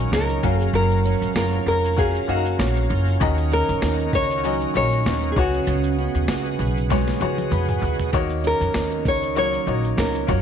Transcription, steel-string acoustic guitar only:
0.00 0.50 D#3 medium
0.00 0.43 F#3 medium
0.00 0.13 C#4 medium
0.00 0.50 D#4 medium
0.00 1.66 A#4 medium
0.13 1.05 C#4 medium
0.44 0.73 F#3 medium
0.74 4.24 F#3 medium
1.05 1.97 C#4 medium
1.36 2.28 F4 medium
1.67 4.14 A#4 medium
1.97 2.59 C#4 medium
2.28 2.44 D#4 medium
2.59 3.51 C#4 medium
2.90 3.28 F4 medium
3.21 5.36 D#3 medium
3.52 5.06 C#4 medium
3.83 4.74 D#4 medium
4.14 5.43 A#4 medium
4.45 6.62 F#3 medium
4.76 5.44 D#4 medium
5.06 5.98 C#4 medium
5.37 5.66 C#3 medium
5.67 8.12 C#3 medium
5.98 7.50 B3 medium
6.29 7.21 F#4 medium
6.59 8.20 G#4 medium
6.91 8.20 G#3 medium
7.21 7.82 F#4 medium
7.52 8.20 B3 medium
7.82 8.74 F#4 medium
8.13 10.35 D#3 medium
8.44 9.98 C#4 medium
8.75 9.66 D#4 medium
9.06 10.42 A#4 medium
9.36 10.28 F#3 medium
9.67 10.35 D#4 medium
9.98 10.42 C#4 medium
10.28 10.42 F#3 medium

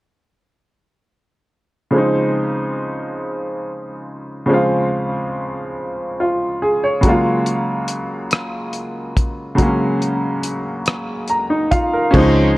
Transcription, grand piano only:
1.91 4.43 C#3 medium
1.91 4.44 F3 medium
1.91 4.45 G#3 medium
1.96 4.46 C4 medium
1.96 4.47 D#4 medium
4.46 6.98 C#3 medium
4.46 6.99 F3 soft
4.46 7.00 G#3 medium
4.52 7.01 C4 medium
4.52 6.18 F4 medium
6.20 6.60 F4 soft
6.62 6.82 G#4 medium
6.84 7.23 C#5 medium
7.01 9.54 C#3 medium
7.01 9.54 F#3 medium
7.05 9.56 G#3 medium
7.05 9.56 A#3 medium
7.05 9.57 F4 medium
9.55 12.08 C#3 medium
9.55 12.09 F#3 medium
9.55 12.10 G#3 medium
9.61 12.11 A#3 medium
9.61 12.09 C#4 medium
11.30 11.69 A#5 medium
11.50 11.70 D#4 soft
11.71 11.92 F4 medium
11.71 12.11 F5 medium
11.93 12.34 A#4 soft
12.11 12.58 F3 medium
12.11 12.58 G#3 medium
12.11 12.58 C#4 medium
12.16 12.58 C4 medium
12.16 12.58 D#4 medium

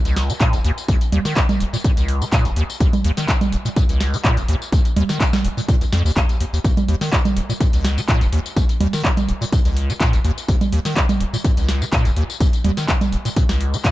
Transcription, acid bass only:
0.05 0.31 C#2 medium
0.29 0.33 F#3 loud
0.41 0.55 A#2 loud
0.53 0.59 D#1 loud
0.65 0.72 D#2 loud
0.89 0.96 D#2 medium
1.12 1.19 D#2 loud
1.25 1.35 D#3 medium
1.36 1.41 A#2 medium
1.61 1.65 D#1 medium
1.73 1.77 A#2 medium
1.84 1.91 A#2 medium
1.97 2.23 C#2 medium
2.21 2.25 F#3 loud
2.32 2.47 A#2 loud
2.45 2.51 D#1 loud
2.56 2.63 D#2 loud
2.81 2.88 D#2 medium
3.05 3.12 D#2 loud
3.17 3.27 D#3 medium
3.29 3.33 A#2 medium
3.53 3.57 D#1 medium
3.65 3.69 A#2 medium
3.76 3.83 A#2 medium
3.89 4.15 C#2 medium
4.13 4.17 F#3 loud
4.25 4.39 A#2 loud
4.37 4.43 D#1 loud
4.49 4.55 D#2 loud
4.73 4.80 D#2 medium
4.96 5.03 D#2 loud
5.09 5.19 D#3 medium
5.20 5.25 A#2 medium
5.44 5.49 D#1 medium
5.57 5.61 A#2 medium
5.68 5.75 A#2 medium
5.81 5.85 C#2 medium
5.92 6.03 F2 loud
6.05 6.11 D#2 loud
6.16 6.21 D#2 loud
6.40 6.45 D#2 medium
6.53 6.59 D#2 medium
6.64 6.71 D#2 medium
6.88 6.95 D#2 loud
7.01 7.11 D#3 medium
7.13 7.17 A#2 medium
7.37 7.41 D#1 medium
7.49 7.53 A#2 medium
7.61 7.68 A#2 medium
7.73 7.99 C#2 medium
7.97 8.01 F#3 loud
8.08 8.23 A#2 loud
8.21 8.27 D#1 loud
8.32 8.39 D#2 loud
8.57 8.64 D#2 medium
8.80 8.87 D#2 loud
8.93 9.03 D#3 medium
9.04 9.09 A#2 medium
9.29 9.33 D#1 medium
9.41 9.45 A#2 medium
9.53 9.60 A#2 medium
9.65 9.91 C#2 medium
9.89 9.93 F#3 loud
10.00 10.15 A#2 loud
10.13 10.19 D#1 loud
10.25 10.32 D#2 loud
10.48 10.55 D#2 medium
10.72 10.79 D#2 loud
10.85 10.95 D#3 medium
10.96 11.01 A#2 medium
11.21 11.25 D#1 medium
11.33 11.37 A#2 medium
11.45 11.52 A#2 medium
11.57 11.83 C#2 medium
11.81 11.85 F#3 loud
11.93 12.07 A#2 loud
12.05 12.11 D#1 loud
12.17 12.24 D#2 loud
12.40 12.47 D#2 medium
12.64 12.71 D#2 loud
12.77 12.87 D#3 medium
12.89 12.93 A#2 medium
13.12 13.17 D#1 medium
13.25 13.29 A#2 medium
13.37 13.44 A#2 medium
13.49 13.75 C#2 medium
13.73 13.77 F#3 loud
13.85 13.91 A#2 loud

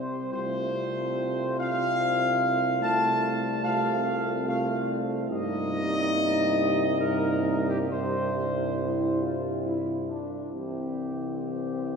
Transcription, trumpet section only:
0.00 0.29 C5 medium
0.32 1.55 C5 loud
1.59 2.78 F5 loud
2.82 3.60 A5 loud
3.64 4.43 F5 medium
4.48 4.87 F5 medium
5.31 6.95 D#5 loud
7.00 7.67 A#4 medium
7.68 7.78 G4 medium
7.91 9.63 C5 medium
10.52 11.96 G4 medium

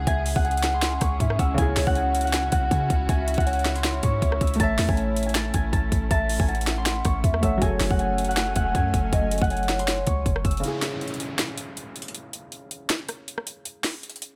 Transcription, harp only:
0.00 0.35 F#5 medium
0.07 0.44 G#5 loud
0.36 1.87 F#5 medium
0.45 1.57 G#5 medium
0.74 1.08 C6 medium
1.02 2.28 C#6 medium
1.39 2.53 E6 medium
1.58 1.95 G#5 loud
1.87 2.24 F#5 medium
1.96 2.33 G#5 medium
2.25 2.52 F#5 medium
2.33 2.71 G#5 medium
2.52 3.37 F#5 medium
2.71 3.09 G#5 medium
3.09 3.46 G#5 loud
3.38 4.98 F#5 medium
3.47 4.66 G#5 medium
3.75 4.09 C6 medium
4.03 5.29 C#6 medium
4.41 5.55 E6 medium
4.60 4.95 A5 loud
4.89 5.03 G#5 medium
4.97 5.32 A5 medium
5.26 5.41 G#5 medium
5.35 5.60 A5 medium
5.54 5.78 G#5 medium
5.72 6.10 A5 medium
6.11 6.46 A5 loud
6.40 6.54 G#5 medium
6.48 7.68 A5 medium
6.78 7.11 C6 medium
7.05 8.31 C#6 medium
7.43 8.57 E6 medium
7.62 7.99 G#5 loud
7.91 8.28 F#5 medium
8.00 8.37 G#5 medium
8.28 8.56 F#5 medium
8.38 8.75 G#5 medium
8.56 9.42 F#5 medium
8.75 9.12 G#5 medium
9.13 9.50 G#5 loud
9.42 11.03 F#5 medium
9.51 11.01 G#5 medium
9.79 10.13 C6 medium
10.07 11.33 C#6 medium
10.45 11.59 E6 medium

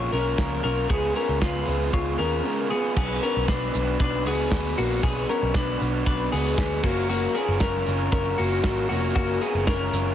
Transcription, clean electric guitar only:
0.00 0.13 F4 medium
0.00 0.12 C#5 medium
0.12 0.61 C#4 medium
0.12 0.61 A#4 medium
0.64 0.90 C#4 medium
0.64 0.89 A#4 medium
0.90 1.16 B3 medium
0.90 1.16 G#4 medium
1.16 1.42 C#4 medium
1.16 1.41 A#4 medium
1.41 1.90 F4 medium
1.41 1.90 B4 medium
1.94 2.20 F4 medium
1.94 2.18 C#5 medium
2.18 2.68 C#4 medium
2.18 2.67 A#4 medium
2.71 2.96 B3 medium
2.71 2.96 G#4 medium
2.97 3.23 B3 medium
2.97 3.22 G#4 medium
3.23 3.49 C#4 medium
3.23 3.48 A#4 medium
3.48 3.97 D4 medium
3.48 3.97 B4 medium
4.00 4.26 D4 medium
4.00 4.26 B4 medium
4.27 4.75 B3 medium
4.27 4.75 G#4 medium
4.78 5.04 A#3 medium
4.78 5.03 F#4 medium
5.03 5.29 B3 medium
5.03 5.29 G#4 loud
5.29 5.55 C#4 medium
5.29 5.55 A#4 medium
5.55 6.04 D4 medium
5.55 6.03 B4 medium
6.07 6.33 D4 medium
6.07 6.32 B4 medium
6.32 6.81 B3 medium
6.32 6.81 G#4 medium
6.83 7.09 A#3 medium
6.83 7.08 F#4 medium
7.09 7.36 A#3 medium
7.09 7.35 F#4 medium
7.35 7.61 B3 medium
7.35 7.60 G#4 medium
7.60 8.10 C#4 medium
7.60 8.09 A#4 medium
8.12 8.39 C#4 medium
8.12 8.38 A#4 medium
8.38 8.87 A#3 medium
8.38 8.87 F#4 medium
8.89 9.15 A#3 medium
8.89 9.14 F#4 medium
9.15 9.42 A#3 medium
9.15 9.42 F#4 loud
9.41 9.68 B3 medium
9.41 9.67 G#4 medium
9.67 10.14 C#4 medium
9.67 10.14 A#4 medium

